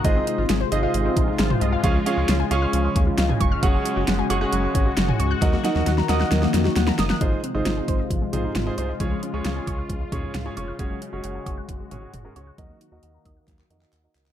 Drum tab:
HH |x-x-x-x-x-x-x-x-|x-x-x-x-x-x-x-x-|x-x-x-x-x-x-x-x-|x-x-x-x-x-x-x-x-|
CP |----------------|----------------|----------------|----------------|
SD |----o-------o---|----o-------o---|----o-------o---|oooooooooooooooo|
T2 |-------------o--|-------------o--|-------------o--|----------------|
BD |o---------o-----|o---------o---o-|o---------o-----|o---------------|

HH |x-x-x-x-x-x-x-x-|x-x-x-x-x-x-x-x-|x-x-x-x-x-x-x-x-|x-x-x-x-x-x-x-x-|
CP |----------------|----------------|----------------|--------xx-xx-xx|
SD |----o-------o---|----o-------o---|----------------|----------------|
T2 |----------o-o---|----------o-o---|----------o-o---|----------------|
BD |o-----o-o-------|o-----o-o-o-----|o-----o-o-------|o-----o-o-------|